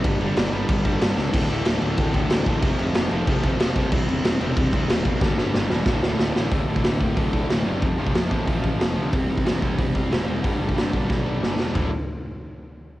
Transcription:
<<
  \new Staff \with { instrumentName = "Overdriven electric guitar" } { \clef bass \time 4/4 \key g \major \tempo 4 = 184 <g, d g>8 <g, d g>8 <g, d g>8 <g, d g>8 <g, d g>8 <g, d g>8 <g, d g>8 <g, d g>8 | <d, a, d>8 <d, a, d>8 <d, a, d>8 <d, a, d>8 <d, a, d>8 <d, a, d>8 <d, a, d>8 <d, a, d>8 | <f, c f>8 <f, c f>8 <f, c f>8 <f, c f>8 <f, c f>8 <f, c f>8 <f, c f>8 <f, c f>8 | <c g c'>8 <c g c'>8 <c g c'>8 <c g c'>8 <c g c'>8 <c g c'>8 <c g c'>8 <c g c'>8 |
<g, d g>8 <g, d g>8 <g, d g>8 <g, d g>8 <d, a, d>8 <d, a, d>8 <d, a, d>8 <d, a, d>8 | <d, a, d>8 <d, a, d>8 <d, a, d>8 <d, a, d>8 <d, a, d>8 <d, a, d>8 <d, a, d>8 <d, a, d>8 | <f, c f>8 <f, c f>8 <f, c f>8 <f, c f>8 <f, c f>8 <f, c f>8 <f, c f>8 <f, c f>8 | <c g c'>8 <c g c'>8 <c g c'>8 <c g c'>8 <c g c'>8 <c g c'>8 <c g c'>8 <c g c'>8 |
<g, d g>8 <g, d g>8 <g, d g>8 <g, d g>8 <g, d g>8 <g, d g>8 <g, d g>8 <g, d g>8 | <d, a, d>8 r2. r8 | }
  \new Staff \with { instrumentName = "Picked electric bass" } { \clef bass \time 4/4 \key g \major g,,8 g,,8 g,,8 g,,8 g,,8 g,,8 g,,8 cis,8 | d,,8 d,,8 d,,8 d,,8 d,,8 d,,8 d,,8 a,,8 | f,,8 f,,8 f,,8 f,,8 f,,8 f,,8 f,,8 c,8 | e,,8 e,,8 e,,8 e,,8 e,,8 e,,8 e,,8 b,,8 |
g,,8 g,,8 g,,8 e,,8 d,,8 d,,8 d,,8 a,,8 | d,,8 d,,8 d,,4 d,,8 d,,8 d,,8 fis,,8 | f,,8 f,,8 f,8 a,,8 a,,4 f,,8 d,8 | e,,8 e,,8 e,,4 e,,8 e,,8 e,,8 e,,8 |
g,,8 g,,8 g,8 b,,8 b,,4 g,,8 e,,8 | d,,8 r2. r8 | }
  \new DrumStaff \with { instrumentName = "Drums" } \drummode { \time 4/4 <cymc bd>8 cymc8 <cymc sn>8 cymc8 <cymc bd>8 <cymc bd>8 <cymc sn>8 sn8 | <cymc bd>8 cymc8 <cymc sn>8 cymc8 <cymc bd>8 <cymc bd>8 <cymc sn>8 <cymc bd>8 | <cymc bd>8 cymc8 <cymc sn>8 cymc8 <cymc bd>8 <cymc bd>8 <cymc sn>8 <cymc bd>8 | <cymc bd>8 cymc8 <cymc sn>8 cymc8 <cymc bd>8 <cymc bd>8 <cymc sn>8 <cymc bd>8 |
<bd sn>8 sn8 sn8 sn8 <bd sn>8 sn8 sn8 sn8 | <hho bd>8. bd16 <hho sn>8 bd8 <hho bd>8 bd8 <hho sn>4 | <hho bd>8. bd16 <hho sn>8 bd8 <hho bd>8 bd8 <hho sn>4 | <hho bd>8. bd16 <hho sn>8 bd8 <hho bd>8 bd8 <hho sn>4 |
<hho bd>8. bd16 <hho sn>8 bd8 <bd sn>4 sn8 sn8 | <bd rb tomfh>4 r4 r4 r4 | }
>>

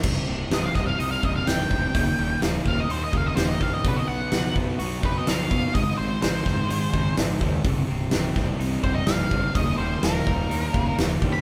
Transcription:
<<
  \new Staff \with { instrumentName = "Lead electric guitar" } { \time 4/4 \key c \minor \tempo 4 = 126 r4 ees''16 f''16 ees''16 f''16 ees''16 f''16 ees''16 f''16 g''4~ | g''4 r8 f''16 ees''16 c''16 ees''16 f''16 ees''16 c''16 ees''16 f''16 ees''16 | b'16 dis''16 fis''4 r4 b'16 dis''16 f''4 | ees''8 c''8 c''2 r4 |
r2 r8 c''16 ees''16 f''4 | ees''8 c''8 bes'2 r8. b''16 | }
  \new Staff \with { instrumentName = "Clean electric guitar" } { \clef bass \time 4/4 \key c \minor c,8 c8 g8 c8 ees'8 g8 g,8 c8 | ees,8 g8 bes8 g8 ees'8 bes8 ees8 g8 | b,8 b8 dis'8 b8 fis'8 dis'8 fis8 b8 | aes,8 c'8 ees'8 c'8 aes'8 ees'8 aes8 c'8 |
c,8 c8 g8 c8 ees'8 g8 g,8 c8 | ees,8 g8 bes8 g8 ees'8 bes8 ees8 g8 | }
  \new Staff \with { instrumentName = "Distorted electric guitar" } { \clef bass \time 4/4 \key c \minor <c, g, c>4 <c, g, c>8 <c, g, c>8 <c, g, c>4 <c, g, c>8 <c, g, c>8 | <ees, bes, ees>4 <ees, bes, ees>8 <ees, bes, ees>8 <ees, bes, ees>4 <ees, bes, ees>8 <ees, bes, ees>8 | <b, fis b>4 <b, fis b>8 <b, fis b>8 <b, fis b>4 <b, fis b>8 <b, fis b>8 | <aes, ees aes>4 <aes, ees aes>8 <aes, ees aes>8 <aes, ees aes>4 <aes, ees aes>8 <aes, ees aes>8 |
<c, g, c>4 <c, g, c>8 <c, g, c>8 <c, g, c>4 <c, g, c>8 <c, g, c>8 | <ees, bes, ees>4 <ees, bes, ees>8 <ees, bes, ees>8 <ees, bes, ees>4 <ees, bes, ees>8 <ees, bes, ees>8 | }
  \new Staff \with { instrumentName = "Fingered electric bass" } { \clef bass \time 4/4 \key c \minor c,,8 c,,8 c,,8 c,,8 c,8 c,,8 c,,8 d,,8 | ees,,8 ees,,8 ees,,8 ees,,8 ees,8 ees,,8 ees,,8 bes,,8 | b,,8 b,,8 b,,8 b,,8 b,,8 b,,8 b,,8 bes,,8 | aes,,8 aes,,8 aes,,8 aes,,8 aes,8 aes,,8 aes,,8 ees,8 |
c,,8 c,,8 c,,8 c,,8 c,8 c,,8 c,,8 g,,8 | ees,,8 ees,,8 ees,,8 ees,,8 ees,8 ees,,8 ees,,8 bes,,8 | }
  \new DrumStaff \with { instrumentName = "Drums" } \drummode { \time 4/4 <cymc bd>4 <hho sn>8 <bd sn>8 hho8 bd8 <hho sn>8 bd8 | <hho bd>4 <hho sn>8 bd8 hho8 bd8 <hho sn>8 bd8 | <hho bd>4 <hho sn>8 bd8 hho8 bd8 <hho sn>8 bd8 | <hho bd>4 <hho sn>8 <bd sn>8 hho8 bd8 <hho sn>8 bd8 |
<hho bd>4 <hho sn>8 <bd sn>8 hho8 bd8 <hho sn>8 bd8 | <hho bd>4 <hho sn>8 bd8 hho8 bd8 <hho sn>8 bd8 | }
>>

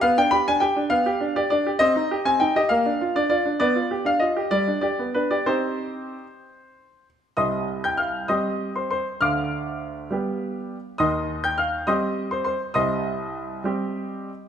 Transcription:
\new Staff \with { instrumentName = "Grand piano" } { \time 6/8 \key c \minor \tempo 4. = 67 << { f''16 g''16 b''16 aes''16 g''8 f''8. d''16 d''8 | ees''8. aes''16 g''16 ees''16 f''8. d''16 d''8 | d''8. f''16 ees''8 d''8 d''8 b'16 d''16 | c''2~ c''8 r8 |
<ees'' c''' ees'''>8. <g'' g'''>16 <f'' f'''>8 <ees'' c''' ees'''>8. <c'' c'''>16 <c'' c'''>8 | <f'' d''' f'''>2. | <ees'' c''' ees'''>8. <g'' g'''>16 <f'' f'''>8 <ees'' c''' ees'''>8. <c'' c'''>16 <c'' c'''>8 | <ees'' c''' ees'''>2. | } \\ { b16 d'16 g'16 d'16 g'16 d'16 b16 g'16 d'16 g'16 d'16 g'16 | c'16 ees'16 g'16 c'16 ees'16 g'16 bes16 d'16 f'16 d'16 f'16 d'16 | b16 f'16 g'16 d'16 f'16 g'16 g16 d'16 g'16 b16 d'16 g'16 | <c' ees' g'>4. r4. |
<c, c>4. <g c' g'>4. | <d, d>4. <g b g'>4. | <ees, ees>4. <g c' g'>4. | <c, c>4. <g c' g'>4. | } >> }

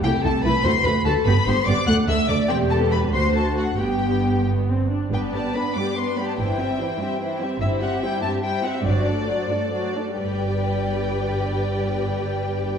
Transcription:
<<
  \new Staff \with { instrumentName = "Violin section" } { \time 6/8 \key g \major \tempo 4. = 94 g''8 a''8 b''8 c'''8 b''8 a''8 | b''8 c'''8 d'''8 fis'''8 e'''8 d'''8 | g''8 a''8 b''8 c'''8 a''8 fis''8 | g''4. r4. |
g''8 a''8 b''8 d'''8 c'''8 b''16 a''16 | g''2~ g''8 r8 | e''8 fis''8 g''8 a''8 g''8 fis''16 e''16 | d''2~ d''8 r8 |
g''2.~ | g''2. | }
  \new Staff \with { instrumentName = "Violin section" } { \time 6/8 \key g \major g'8 a'8 b'8 c''8 b'8 a'8 | b'8 c''8 d''8 fis''8 e''8 d''8 | g'8 a'8 b'8 c''8 a'8 fis'8 | g'4. r4. |
b'8 <g' d''>8 b'8 <g' d''>8 b'8 <g' d''>8 | <e' c''>8 <g' e''>8 <e' c''>8 <g' e''>8 <e' c''>8 <g' e''>8 | <e' c''>8 <g' e''>8 <e' c''>8 <g' e''>8 <e' c''>8 <g' e''>8 | <c'' d''>8 <a' d''>8 <c'' d''>8 <a' d''>8 <c'' d''>8 <a' d''>8 |
<b' d''>2.~ | <b' d''>2. | }
  \new Staff \with { instrumentName = "Viola section" } { \time 6/8 \key g \major << { e'8 e'8 e'8 fis'8 fis'8 fis'8 | g'8 g'8 g'8 a'8 a'8 a'8 | g'4. fis'4. | g'4. b8 c'8 d'8 |
d'8 b8 d'8 b8 d'8 b8 | e'8 c'8 e'8 c'8 e'8 c'8 | e'8 g'8 e'8 g'8 e'8 g'8 | fis'8 d'8 fis'8 d'8 fis'8 d'8 |
g'2.~ | g'2. | } \\ { a8 a8 a8 a8 a8 a8 | b8 b8 b8 a8 a8 a8 | c'8. b8. a4. | b4. r4. |
b8 g8 b8 g8 b8 g8 | e8 g8 e8 g8 e8 g8 | g8 c'8 g8 c'8 g8 c'8 | fis8 a8 fis8 a8 fis8 a8 |
g2.~ | g2. | } >> }
  \new Staff \with { instrumentName = "Cello section" } { \clef bass \time 6/8 \key g \major c,8 c,8 c,8 d,8 d,8 d,8 | g,8 g,8 g,8 d,8 d,8 d,8 | e,4. d,4. | g,2~ g,8 r8 |
g,4. g,4. | g,4. g,4. | g,4. g,4. | g,4. g,4. |
g,2.~ | g,2. | }
  \new Staff \with { instrumentName = "Double bass section" } { \clef bass \time 6/8 \key g \major c,8 c,8 c,8 d,8 d,8 d,8 | g,,8 g,,8 g,,8 d,8 d,8 d,8 | e,,4. d,4. | g,,2~ g,,8 r8 |
g,,4 r2 | g,,4 r2 | g,,4 r2 | g,,4 r2 |
g,,2.~ | g,,2. | }
>>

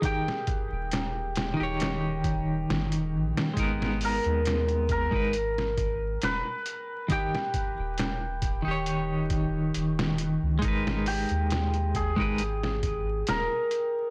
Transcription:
<<
  \new Staff \with { instrumentName = "Hammered dulcimer" } { \time 4/4 \key gis \minor \tempo 4 = 68 g'2. r4 | r8 ais'4 ais'4. b'4 | g'2 r2 | r8 g'4 gis'4. ais'4 | }
  \new Staff \with { instrumentName = "Clean electric guitar" } { \time 4/4 \key gis \minor <dis dis' g' g''>16 r4. <dis dis' g' cis''>2~ <dis dis' g' cis''>16 | <gis b dis' ais'>4.~ <gis b dis' ais'>16 <gis dis' ais' b'>16 r2 | <dis dis' g' g''>16 r4. <dis dis' g' cis''>2~ <dis dis' g' cis''>16 | <gis dis' ais' b'>4.~ <gis dis' ais' b'>16 <gis dis' ais' b'>16 r2 | }
  \new Staff \with { instrumentName = "Sub bass" } { \clef bass \time 4/4 \key gis \minor r8. dis,,4 dis,,4~ dis,,16 g,,16 dis,,16 ais,,16 r16 | gis,,8. dis,4 gis,,4~ gis,,16 dis,,16 r8. | r8. dis,,4 dis,,4~ dis,,16 dis,,8. cis,16 | gis,,8. dis,4 gis,,4~ gis,,16 dis,,16 r8. | }
  \new DrumStaff \with { instrumentName = "Drums" } \drummode { \time 4/4 <hh bd>16 sn16 <hh bd>8 <hh sn>8 <hh sn>8 <hh sn>8 <hh bd>8 sn16 hh8 sn16 | <hh bd>16 sn16 hho16 hh16 <hh sn>16 hh16 <hh bd>16 bd16 hh16 sn16 <hh bd>8 <hh sn>8 hh8 | <hh bd>16 sn16 <hh bd>8 <hh sn>8 <hh bd>8 hh8 <hh bd>8 hh16 sn16 hh8 | <hh bd>16 sn16 hho16 hh16 <hh sn>16 hh16 <hh bd>16 bd16 hh16 sn16 <hh bd>8 <hh sn>8 hh8 | }
>>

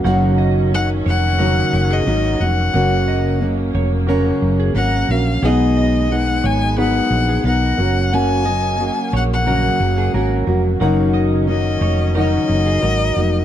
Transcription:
<<
  \new Staff \with { instrumentName = "Violin" } { \time 4/4 \key dis \minor \tempo 4 = 89 r4 fis''8 fis''4~ fis''16 dis''8. fis''8~ | fis''4 r2 fis''8 eis''8 | dis''4 fis''8 gis''8 fis''4 fis''4 | gis''4. fis''16 fis''4. r8. |
r4 dis''4 dis''2 | }
  \new Staff \with { instrumentName = "Clean electric guitar" } { \time 4/4 \key dis \minor fis''8 dis''8. r16 cis''16 r16 ais'16 r8 gis'16 ais'8. r16 | fis''8 dis''8. r16 cis''16 r16 ais'16 r8 gis'16 ais'8. r16 | fis''8 dis''8. r16 cis''16 r16 b'16 r8 gis'16 ais'8. r16 | fis''8 dis''8. r16 cis''16 r16 ais'16 r8 gis'16 ais'8. r16 |
fis''8 dis''8. r16 cis''16 r16 ais'16 r8 gis'16 ais'8. r16 | }
  \new Staff \with { instrumentName = "Grand piano" } { \time 4/4 \key dis \minor << { r1 | r1 | r1 | r2. gis''8 fis''8 |
r1 | } \\ { <dis' fis' ais' cis'' eis'' fis''>4. r8 <dis' fis' ais' cis'' fis''>4. r8 | <fis' ais' cis''>4. r8 <fis' ais' cis''>4. r8 | <cis' dis' fis' gis' b' fis''>4. r8 <dis' fis' gis' b' fis''>4. <ais' cis'' fis''>8~ | <ais' cis'' fis''>4 r4 <ais' cis'' fis''>4. r8 |
<dis' fis' ais' cis'' fis''>4. r8 <dis' fis' ais' cis'' fis''>4. r8 | } >> }
  \new Staff \with { instrumentName = "Steel-string acoustic guitar" } { \time 4/4 \key dis \minor <fis, cis fis ais dis' fis'>4 <fis ais dis' fis'>4 <cis fis ais dis' fis'>4 <fis ais dis' fis'>8 <fis ais dis' fis'>8 | <fis, cis fis ais cis' fis'>4 <fis ais cis' fis'>4 <cis fis ais cis' fis'>4 <fis ais cis' fis'>8 <fis ais cis' fis'>8 | <b, fis b dis' gis'>4 <fis b dis' gis'>4 <fis b dis' gis'>4 <fis b dis' gis'>8 <fis ais cis' fis'>8 | <fis, cis fis ais cis' fis'>8 <fis ais cis' fis'>8 <fis ais cis' fis'>4 <fis, cis fis ais cis' fis'>4 <fis ais cis' fis'>8 <fis ais cis' fis'>8 |
<fis, cis fis ais dis' fis'>4 <fis ais dis' fis'>4 <cis fis ais dis' fis'>4 <fis ais dis' fis'>8 <fis ais dis' fis'>8 | }
  \new Staff \with { instrumentName = "String section" } { \clef bass \time 4/4 \key dis \minor << { <dis cis'>1 | <cis ais>1 | <dis b>2.~ <dis b>8 <cis ais>8~ | <cis ais>1 |
<dis cis'>1 | } \\ { fis1~ | fis1 | gis2.~ gis8 fis8~ | fis1~ |
fis1 | } >> }
  \new Staff \with { instrumentName = "Fingered electric bass" } { \clef bass \time 4/4 \key dis \minor fis,,4. eis,,4 fis,,8 gis,,8 eis,,8 | fis,,4. eis,,4 fis,,8 gis,,8 ais,,8 | b,,4. gis,,4 ais,,8 b,,8 fis,,8~ | fis,,4. ais,,4 fis,,8 gis,,8 eis,,8 |
fis,,4. eis,,4 fis,,8 gis,,8 eis,,8 | }
>>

